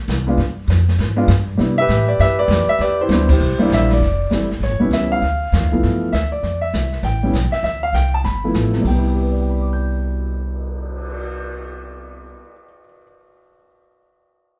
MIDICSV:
0, 0, Header, 1, 6, 480
1, 0, Start_track
1, 0, Key_signature, 0, "major"
1, 0, Tempo, 301963
1, 617, Time_signature, 4, 2, 24, 8
1, 23203, End_track
2, 0, Start_track
2, 0, Title_t, "Grand piano"
2, 0, Program_c, 0, 0
2, 424, Note_on_c, 0, 56, 71
2, 431, Note_on_c, 0, 59, 63
2, 457, Note_on_c, 0, 62, 64
2, 459, Note_on_c, 0, 65, 72
2, 595, Note_off_c, 0, 56, 0
2, 598, Note_off_c, 0, 59, 0
2, 611, Note_off_c, 0, 62, 0
2, 612, Note_off_c, 0, 65, 0
2, 1851, Note_on_c, 0, 56, 76
2, 1851, Note_on_c, 0, 59, 70
2, 1858, Note_on_c, 0, 62, 68
2, 1875, Note_on_c, 0, 65, 81
2, 2027, Note_off_c, 0, 56, 0
2, 2027, Note_off_c, 0, 59, 0
2, 2031, Note_off_c, 0, 62, 0
2, 2039, Note_off_c, 0, 65, 0
2, 2504, Note_on_c, 0, 55, 60
2, 2516, Note_on_c, 0, 59, 56
2, 2523, Note_on_c, 0, 62, 50
2, 2527, Note_on_c, 0, 64, 69
2, 2784, Note_off_c, 0, 55, 0
2, 2790, Note_off_c, 0, 59, 0
2, 2793, Note_off_c, 0, 62, 0
2, 2795, Note_off_c, 0, 64, 0
2, 2829, Note_on_c, 0, 76, 112
2, 2870, Note_on_c, 0, 67, 76
2, 2880, Note_on_c, 0, 71, 80
2, 3314, Note_on_c, 0, 74, 89
2, 3322, Note_off_c, 0, 76, 0
2, 3502, Note_off_c, 0, 74, 0
2, 3504, Note_on_c, 0, 76, 101
2, 3511, Note_off_c, 0, 67, 0
2, 3513, Note_off_c, 0, 71, 0
2, 3535, Note_on_c, 0, 67, 70
2, 3537, Note_on_c, 0, 71, 73
2, 3791, Note_off_c, 0, 71, 0
2, 3798, Note_off_c, 0, 67, 0
2, 3799, Note_on_c, 0, 74, 109
2, 3801, Note_off_c, 0, 76, 0
2, 3815, Note_on_c, 0, 71, 69
2, 3822, Note_on_c, 0, 67, 69
2, 4278, Note_on_c, 0, 76, 100
2, 4287, Note_off_c, 0, 74, 0
2, 4445, Note_off_c, 0, 76, 0
2, 4469, Note_on_c, 0, 74, 103
2, 4476, Note_off_c, 0, 71, 0
2, 4479, Note_off_c, 0, 67, 0
2, 4499, Note_on_c, 0, 71, 66
2, 4503, Note_on_c, 0, 67, 67
2, 4764, Note_off_c, 0, 74, 0
2, 4783, Note_off_c, 0, 67, 0
2, 4789, Note_on_c, 0, 72, 86
2, 4807, Note_on_c, 0, 67, 65
2, 4810, Note_on_c, 0, 64, 66
2, 4929, Note_on_c, 0, 55, 69
2, 4934, Note_off_c, 0, 64, 0
2, 4941, Note_on_c, 0, 59, 62
2, 4946, Note_on_c, 0, 62, 70
2, 4958, Note_on_c, 0, 64, 77
2, 5195, Note_off_c, 0, 55, 0
2, 5201, Note_off_c, 0, 59, 0
2, 5204, Note_off_c, 0, 62, 0
2, 5210, Note_off_c, 0, 64, 0
2, 5227, Note_off_c, 0, 72, 0
2, 5248, Note_off_c, 0, 67, 0
2, 5251, Note_on_c, 0, 72, 77
2, 5270, Note_on_c, 0, 64, 59
2, 5272, Note_on_c, 0, 67, 58
2, 5372, Note_off_c, 0, 71, 0
2, 5712, Note_on_c, 0, 55, 77
2, 5717, Note_off_c, 0, 64, 0
2, 5722, Note_on_c, 0, 58, 67
2, 5726, Note_on_c, 0, 62, 76
2, 5741, Note_on_c, 0, 64, 79
2, 5946, Note_on_c, 0, 76, 86
2, 6135, Note_off_c, 0, 72, 0
2, 6145, Note_off_c, 0, 67, 0
2, 6194, Note_off_c, 0, 76, 0
2, 6253, Note_on_c, 0, 74, 86
2, 6337, Note_off_c, 0, 55, 0
2, 6342, Note_off_c, 0, 58, 0
2, 6345, Note_off_c, 0, 62, 0
2, 6352, Note_off_c, 0, 64, 0
2, 6845, Note_on_c, 0, 55, 52
2, 6860, Note_on_c, 0, 57, 49
2, 6863, Note_on_c, 0, 60, 47
2, 6870, Note_on_c, 0, 64, 62
2, 7113, Note_off_c, 0, 55, 0
2, 7116, Note_off_c, 0, 74, 0
2, 7121, Note_off_c, 0, 57, 0
2, 7122, Note_off_c, 0, 60, 0
2, 7126, Note_off_c, 0, 64, 0
2, 7367, Note_on_c, 0, 73, 72
2, 7625, Note_on_c, 0, 55, 63
2, 7635, Note_on_c, 0, 59, 61
2, 7655, Note_on_c, 0, 61, 58
2, 7659, Note_on_c, 0, 64, 73
2, 7840, Note_on_c, 0, 76, 74
2, 7844, Note_off_c, 0, 73, 0
2, 8101, Note_off_c, 0, 76, 0
2, 8136, Note_on_c, 0, 77, 89
2, 8255, Note_off_c, 0, 55, 0
2, 8260, Note_off_c, 0, 59, 0
2, 8269, Note_off_c, 0, 61, 0
2, 8271, Note_off_c, 0, 64, 0
2, 9087, Note_on_c, 0, 53, 61
2, 9094, Note_on_c, 0, 57, 54
2, 9104, Note_on_c, 0, 59, 60
2, 9117, Note_on_c, 0, 52, 67
2, 9706, Note_off_c, 0, 53, 0
2, 9710, Note_off_c, 0, 57, 0
2, 9715, Note_off_c, 0, 59, 0
2, 9721, Note_off_c, 0, 52, 0
2, 9736, Note_on_c, 0, 76, 81
2, 9796, Note_off_c, 0, 77, 0
2, 10009, Note_off_c, 0, 76, 0
2, 10045, Note_on_c, 0, 74, 74
2, 10514, Note_on_c, 0, 76, 74
2, 10531, Note_off_c, 0, 74, 0
2, 11131, Note_off_c, 0, 76, 0
2, 11198, Note_on_c, 0, 79, 78
2, 11497, Note_on_c, 0, 55, 53
2, 11517, Note_on_c, 0, 59, 48
2, 11523, Note_on_c, 0, 61, 51
2, 11532, Note_on_c, 0, 64, 60
2, 11650, Note_off_c, 0, 55, 0
2, 11660, Note_off_c, 0, 59, 0
2, 11663, Note_off_c, 0, 61, 0
2, 11667, Note_off_c, 0, 64, 0
2, 11956, Note_on_c, 0, 76, 73
2, 11984, Note_off_c, 0, 79, 0
2, 12119, Note_off_c, 0, 76, 0
2, 12143, Note_on_c, 0, 76, 79
2, 12413, Note_off_c, 0, 76, 0
2, 12449, Note_on_c, 0, 77, 84
2, 12613, Note_off_c, 0, 77, 0
2, 12628, Note_on_c, 0, 79, 86
2, 12896, Note_off_c, 0, 79, 0
2, 12943, Note_on_c, 0, 81, 75
2, 13019, Note_off_c, 0, 81, 0
2, 13108, Note_on_c, 0, 83, 77
2, 13417, Note_on_c, 0, 53, 57
2, 13429, Note_on_c, 0, 57, 53
2, 13429, Note_on_c, 0, 59, 49
2, 13439, Note_on_c, 0, 64, 61
2, 13549, Note_off_c, 0, 83, 0
2, 13870, Note_on_c, 0, 48, 52
2, 14010, Note_on_c, 0, 55, 46
2, 14032, Note_off_c, 0, 53, 0
2, 14038, Note_off_c, 0, 57, 0
2, 14038, Note_off_c, 0, 59, 0
2, 14043, Note_off_c, 0, 64, 0
2, 14101, Note_on_c, 0, 79, 64
2, 14130, Note_on_c, 0, 59, 51
2, 14271, Note_on_c, 0, 64, 56
2, 14546, Note_on_c, 0, 67, 38
2, 14666, Note_on_c, 0, 71, 39
2, 14802, Note_on_c, 0, 74, 32
2, 14920, Note_off_c, 0, 79, 0
2, 14944, Note_on_c, 0, 79, 32
2, 15099, Note_on_c, 0, 83, 33
2, 15276, Note_on_c, 0, 86, 31
2, 15465, Note_on_c, 0, 91, 29
2, 19473, Note_off_c, 0, 48, 0
2, 19613, Note_off_c, 0, 55, 0
2, 19732, Note_off_c, 0, 59, 0
2, 19874, Note_off_c, 0, 64, 0
2, 20086, Note_off_c, 0, 67, 0
2, 20205, Note_off_c, 0, 71, 0
2, 20341, Note_off_c, 0, 74, 0
2, 20421, Note_off_c, 0, 79, 0
2, 20499, Note_off_c, 0, 83, 0
2, 20587, Note_off_c, 0, 86, 0
2, 20682, Note_off_c, 0, 91, 0
2, 23203, End_track
3, 0, Start_track
3, 0, Title_t, "Upright bass"
3, 0, Program_c, 1, 32
3, 127, Note_on_c, 1, 36, 95
3, 588, Note_off_c, 1, 36, 0
3, 598, Note_on_c, 1, 43, 84
3, 1064, Note_off_c, 1, 43, 0
3, 1074, Note_on_c, 1, 41, 88
3, 1550, Note_off_c, 1, 41, 0
3, 1566, Note_on_c, 1, 44, 91
3, 2024, Note_off_c, 1, 44, 0
3, 2034, Note_on_c, 1, 43, 107
3, 2509, Note_off_c, 1, 43, 0
3, 2525, Note_on_c, 1, 48, 83
3, 2990, Note_off_c, 1, 48, 0
3, 3000, Note_on_c, 1, 45, 90
3, 3472, Note_off_c, 1, 45, 0
3, 3485, Note_on_c, 1, 43, 86
3, 3932, Note_off_c, 1, 43, 0
3, 3942, Note_on_c, 1, 41, 99
3, 4230, Note_off_c, 1, 41, 0
3, 4432, Note_on_c, 1, 40, 87
3, 4901, Note_off_c, 1, 40, 0
3, 4910, Note_on_c, 1, 38, 95
3, 5386, Note_off_c, 1, 38, 0
3, 5414, Note_on_c, 1, 36, 91
3, 5687, Note_off_c, 1, 36, 0
3, 5876, Note_on_c, 1, 34, 95
3, 6349, Note_off_c, 1, 34, 0
3, 6364, Note_on_c, 1, 29, 74
3, 6833, Note_off_c, 1, 29, 0
3, 6848, Note_on_c, 1, 31, 72
3, 7308, Note_off_c, 1, 31, 0
3, 7318, Note_on_c, 1, 33, 77
3, 7482, Note_off_c, 1, 33, 0
3, 7482, Note_on_c, 1, 31, 45
3, 7629, Note_off_c, 1, 31, 0
3, 7639, Note_on_c, 1, 28, 54
3, 7794, Note_off_c, 1, 28, 0
3, 7802, Note_on_c, 1, 37, 83
3, 8272, Note_off_c, 1, 37, 0
3, 8292, Note_on_c, 1, 38, 77
3, 8758, Note_off_c, 1, 38, 0
3, 8779, Note_on_c, 1, 40, 81
3, 8945, Note_off_c, 1, 40, 0
3, 8945, Note_on_c, 1, 38, 45
3, 9099, Note_off_c, 1, 38, 0
3, 9113, Note_on_c, 1, 36, 59
3, 9253, Note_off_c, 1, 36, 0
3, 9272, Note_on_c, 1, 43, 75
3, 9729, Note_off_c, 1, 43, 0
3, 9744, Note_on_c, 1, 38, 87
3, 10205, Note_off_c, 1, 38, 0
3, 10218, Note_on_c, 1, 41, 68
3, 10682, Note_off_c, 1, 41, 0
3, 10707, Note_on_c, 1, 36, 77
3, 11163, Note_off_c, 1, 36, 0
3, 11172, Note_on_c, 1, 33, 78
3, 11639, Note_off_c, 1, 33, 0
3, 11658, Note_on_c, 1, 35, 81
3, 11930, Note_off_c, 1, 35, 0
3, 12126, Note_on_c, 1, 38, 78
3, 12590, Note_off_c, 1, 38, 0
3, 12600, Note_on_c, 1, 36, 68
3, 13073, Note_off_c, 1, 36, 0
3, 13100, Note_on_c, 1, 31, 72
3, 13564, Note_off_c, 1, 31, 0
3, 13580, Note_on_c, 1, 33, 85
3, 14044, Note_off_c, 1, 33, 0
3, 14066, Note_on_c, 1, 36, 78
3, 19605, Note_off_c, 1, 36, 0
3, 23203, End_track
4, 0, Start_track
4, 0, Title_t, "Cymbal swell"
4, 14360, Note_on_c, 9, 59, 39
4, 17790, Note_off_c, 9, 59, 0
4, 23203, End_track
5, 0, Start_track
5, 0, Title_t, "Muted upright bass strokes"
5, 4261, Note_on_c, 9, 29, 40
5, 4420, Note_off_c, 9, 29, 0
5, 5695, Note_on_c, 9, 29, 43
5, 5854, Note_off_c, 9, 29, 0
5, 11961, Note_on_c, 9, 29, 28
5, 12120, Note_off_c, 9, 29, 0
5, 23203, End_track
6, 0, Start_track
6, 0, Title_t, "Drums"
6, 150, Note_on_c, 9, 38, 66
6, 151, Note_on_c, 9, 44, 65
6, 309, Note_off_c, 9, 38, 0
6, 310, Note_off_c, 9, 44, 0
6, 623, Note_on_c, 9, 25, 46
6, 623, Note_on_c, 9, 38, 43
6, 782, Note_off_c, 9, 38, 0
6, 1110, Note_on_c, 9, 38, 64
6, 1112, Note_on_c, 9, 44, 52
6, 1269, Note_off_c, 9, 38, 0
6, 1271, Note_off_c, 9, 44, 0
6, 1404, Note_on_c, 9, 38, 37
6, 1563, Note_off_c, 9, 38, 0
6, 1586, Note_off_c, 9, 25, 0
6, 1586, Note_on_c, 9, 25, 51
6, 1586, Note_on_c, 9, 38, 47
6, 1745, Note_off_c, 9, 38, 0
6, 2058, Note_on_c, 9, 38, 73
6, 2060, Note_on_c, 9, 44, 68
6, 2217, Note_off_c, 9, 38, 0
6, 2219, Note_off_c, 9, 44, 0
6, 2537, Note_off_c, 9, 25, 0
6, 2537, Note_on_c, 9, 25, 47
6, 2537, Note_on_c, 9, 38, 45
6, 2696, Note_off_c, 9, 38, 0
6, 3009, Note_on_c, 9, 38, 65
6, 3011, Note_on_c, 9, 44, 57
6, 3168, Note_off_c, 9, 38, 0
6, 3170, Note_off_c, 9, 44, 0
6, 3492, Note_off_c, 9, 25, 0
6, 3492, Note_on_c, 9, 25, 52
6, 3492, Note_on_c, 9, 38, 49
6, 3651, Note_off_c, 9, 38, 0
6, 3979, Note_on_c, 9, 38, 71
6, 3981, Note_on_c, 9, 44, 57
6, 4138, Note_off_c, 9, 38, 0
6, 4140, Note_off_c, 9, 44, 0
6, 4466, Note_off_c, 9, 25, 0
6, 4466, Note_on_c, 9, 25, 49
6, 4466, Note_on_c, 9, 38, 43
6, 4625, Note_off_c, 9, 38, 0
6, 4940, Note_on_c, 9, 38, 68
6, 4941, Note_on_c, 9, 44, 58
6, 5099, Note_off_c, 9, 38, 0
6, 5100, Note_off_c, 9, 44, 0
6, 5232, Note_on_c, 9, 36, 85
6, 5233, Note_on_c, 9, 49, 84
6, 5391, Note_off_c, 9, 36, 0
6, 5392, Note_off_c, 9, 49, 0
6, 5423, Note_off_c, 9, 25, 0
6, 5423, Note_on_c, 9, 25, 45
6, 5905, Note_on_c, 9, 38, 74
6, 5906, Note_on_c, 9, 44, 69
6, 6064, Note_off_c, 9, 38, 0
6, 6065, Note_off_c, 9, 44, 0
6, 6197, Note_on_c, 9, 38, 42
6, 6356, Note_off_c, 9, 38, 0
6, 6394, Note_off_c, 9, 25, 0
6, 6394, Note_on_c, 9, 25, 39
6, 6394, Note_on_c, 9, 38, 36
6, 6553, Note_off_c, 9, 38, 0
6, 6867, Note_on_c, 9, 38, 59
6, 6869, Note_on_c, 9, 44, 60
6, 7026, Note_off_c, 9, 38, 0
6, 7028, Note_off_c, 9, 44, 0
6, 7173, Note_on_c, 9, 38, 38
6, 7332, Note_off_c, 9, 38, 0
6, 7353, Note_off_c, 9, 25, 0
6, 7353, Note_on_c, 9, 25, 41
6, 7353, Note_on_c, 9, 38, 42
6, 7512, Note_off_c, 9, 38, 0
6, 7828, Note_on_c, 9, 38, 54
6, 7829, Note_on_c, 9, 44, 61
6, 7987, Note_off_c, 9, 38, 0
6, 7988, Note_off_c, 9, 44, 0
6, 8318, Note_off_c, 9, 25, 0
6, 8318, Note_on_c, 9, 25, 38
6, 8318, Note_on_c, 9, 38, 40
6, 8477, Note_off_c, 9, 38, 0
6, 8792, Note_on_c, 9, 38, 57
6, 8794, Note_on_c, 9, 44, 60
6, 8951, Note_off_c, 9, 38, 0
6, 8953, Note_off_c, 9, 44, 0
6, 9270, Note_off_c, 9, 25, 0
6, 9270, Note_on_c, 9, 25, 42
6, 9270, Note_on_c, 9, 38, 38
6, 9429, Note_off_c, 9, 38, 0
6, 9760, Note_on_c, 9, 38, 58
6, 9762, Note_on_c, 9, 44, 50
6, 9919, Note_off_c, 9, 38, 0
6, 9921, Note_off_c, 9, 44, 0
6, 10225, Note_off_c, 9, 25, 0
6, 10225, Note_on_c, 9, 25, 44
6, 10225, Note_on_c, 9, 38, 41
6, 10384, Note_off_c, 9, 38, 0
6, 10708, Note_on_c, 9, 38, 50
6, 10710, Note_on_c, 9, 44, 57
6, 10867, Note_off_c, 9, 38, 0
6, 10869, Note_off_c, 9, 44, 0
6, 11003, Note_on_c, 9, 38, 33
6, 11162, Note_off_c, 9, 38, 0
6, 11177, Note_off_c, 9, 25, 0
6, 11177, Note_on_c, 9, 25, 43
6, 11177, Note_on_c, 9, 38, 40
6, 11336, Note_off_c, 9, 38, 0
6, 11678, Note_on_c, 9, 38, 56
6, 11680, Note_on_c, 9, 44, 60
6, 11837, Note_off_c, 9, 38, 0
6, 11839, Note_off_c, 9, 44, 0
6, 11965, Note_on_c, 9, 38, 34
6, 12124, Note_off_c, 9, 38, 0
6, 12148, Note_off_c, 9, 25, 0
6, 12148, Note_on_c, 9, 25, 48
6, 12148, Note_on_c, 9, 38, 35
6, 12307, Note_off_c, 9, 38, 0
6, 12633, Note_on_c, 9, 38, 55
6, 12635, Note_on_c, 9, 44, 51
6, 12792, Note_off_c, 9, 38, 0
6, 12794, Note_off_c, 9, 44, 0
6, 13108, Note_off_c, 9, 25, 0
6, 13108, Note_on_c, 9, 25, 39
6, 13108, Note_on_c, 9, 38, 36
6, 13267, Note_off_c, 9, 38, 0
6, 13582, Note_on_c, 9, 38, 59
6, 13584, Note_on_c, 9, 44, 51
6, 13741, Note_off_c, 9, 38, 0
6, 13743, Note_off_c, 9, 44, 0
6, 13881, Note_on_c, 9, 38, 30
6, 14040, Note_off_c, 9, 38, 0
6, 14067, Note_on_c, 9, 36, 50
6, 14072, Note_on_c, 9, 49, 54
6, 14226, Note_off_c, 9, 36, 0
6, 14231, Note_off_c, 9, 49, 0
6, 14431, Note_off_c, 9, 25, 0
6, 23203, End_track
0, 0, End_of_file